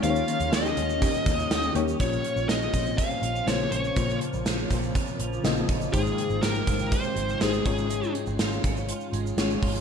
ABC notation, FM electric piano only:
X:1
M:4/4
L:1/8
Q:1/4=122
K:Bbdor
V:1 name="FM electric piano"
[B,EGcd]4 z3 [B,EGd] | [B,DFd]4 z2 [D,B,Fc]2 | [D,B,Fc]4 z2 [D,B,Fe]2 | [A,Ecg]4 z2 [A,EGc] [A,DFd]- |
[A,DFd]3 z3 [A,DFd]2 |]
V:2 name="FM electric piano" clef=bass
E,3 z4 z | B,,3 z4 z | B,,3 z4 z | A,,3 z4 A,,- |
A,,2 z6 |]